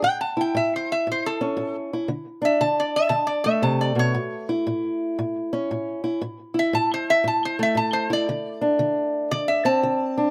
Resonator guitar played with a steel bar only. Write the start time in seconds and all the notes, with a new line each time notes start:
0.04 G5
0.21 A5
0.41 G5
0.57 E5
0.76 C5
0.92 E5
1.12 C5
1.26 A4
2.45 E5
2.61 A5
2.80 D5
2.96 E5
3.09 A5
3.27 D5
3.44 E5
3.63 A5
3.81 D5
3.99 C#5
6.59 E5
6.75 A5
6.94 C5
7.10 E5
7.28 A5
7.45 C5
7.63 E5
7.77 A5
7.93 C5
8.13 D5
9.31 D5
9.48 E5
9.66 A5